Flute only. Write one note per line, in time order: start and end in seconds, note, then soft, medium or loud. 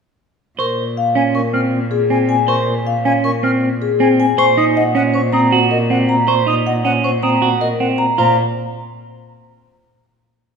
0.59 0.66 C#6 medium
1.16 1.23 G#5 medium
1.35 1.42 C#6 medium
1.53 1.61 F6 soft
2.11 2.18 G#5 medium
2.49 2.56 C#6 medium
3.05 3.12 G#5 medium
3.25 3.32 C#6 medium
3.44 3.51 F6 medium
4.01 4.08 G#5 medium
4.38 4.46 C#6 medium
4.58 4.65 D#6 medium
4.76 4.83 D#5 medium
4.95 5.03 F#5 medium
5.15 5.22 C#6 medium
5.34 5.41 D#6 medium
5.71 5.78 D#5 medium
5.91 5.98 F#5 medium
6.28 6.35 C#6 medium
6.48 6.55 D#6 medium
6.66 6.74 D#5 medium
6.85 6.92 F#5 medium
7.04 7.11 C#6 medium
7.23 7.30 D#6 medium
7.61 7.68 D#5 medium
7.80 7.87 F#5 medium
8.18 8.36 A#5 medium